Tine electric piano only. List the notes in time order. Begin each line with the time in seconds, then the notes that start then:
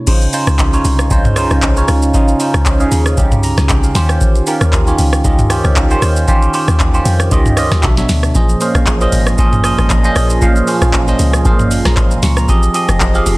0.07 C#3 C#4 D#4 F4 C5
0.33 C#3 C#4 D#4 F4 C5
0.73 C#3 C#4 D#4 F4 C#5
1.10 C#3 C#4 D#4 F4 C5
1.36 C#3 C#4 D#4 F4 C5
1.76 C#3 C#4 D#4 F4 C#5
2.14 C#3 C#4 D#4 F4 G#4
2.40 C#3 C#4 D#4 F4 C5
2.80 C#3 C#4 D#4 F4 G#4
3.17 C#3 C#4 D#4 F4 G4
3.44 A#5
3.58 G#5
3.70 G5
3.84 F5
3.95 D#3 C#4 F4 G4 C5
4.47 D#3 C#4 F4 G4 A#4
4.87 D#3 C#4 F4 G4 C#5
5.24 D#3 C#4 F4 G4 D#5
5.50 D#3 C#4 F4 G4 C5
5.90 D#3 C#4 F4 G4 C5
6.28 D#3 C#4 F4 G4 C5
6.54 D#3 C#4 F4 G4 C5
6.94 D#3 C#4 F4 G4 C5
7.31 D#3 C#4 F4 G4 D#5
7.57 D#3 C#4 F4 G4 D#5
7.83 B2 F#3 D4 A4 C#5 E5
7.97 B2 F#3 D4 A4 C#5 E5
8.35 A#2 F3 C#4 G#4 C5 D#5
8.60 A#2 F3 C#4 G#4 C5 F5
9.01 A#2 F3 C#4 G#4 C5 D#5
9.38 A#2 F3 C#4 G#4 C5 D#5
9.64 A#2 F3 C#4 G#4 C5 D#5
10.04 A#2 F3 C#4 G#4 C5 D#5
10.41 A#2 F3 C#4 G#4 C5 F5
10.67 A#2 F3 C#4 G#4 C5 F5
11.07 A#2 F3 C#4 G#4 C5 D#5
11.45 A#2 F3 C#4 G#4 C5 F5
11.86 A#5
11.97 C6
12.23 C#6
12.37 A#5
12.48 F3 C4 G4 G#4 D#5
12.74 F3 C4 G4 G#4 D#5
13.14 F3 C4 G4 G#4 F5